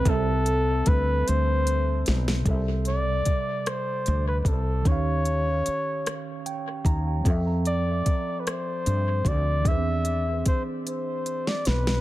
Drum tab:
HH |x-x-x-x-x-x-|x-x-x-x-x-x-|x-x-x-x-x-x-|x-x-x-x-x-x-|
SD |----------oo|------r-----|------r-----|------r-----|
BD |o---o-------|o---o-----o-|o---------o-|o---o-----o-|

HH |x-x-x-x-x-x-|
SD |---------ooo|
BD |o---o-------|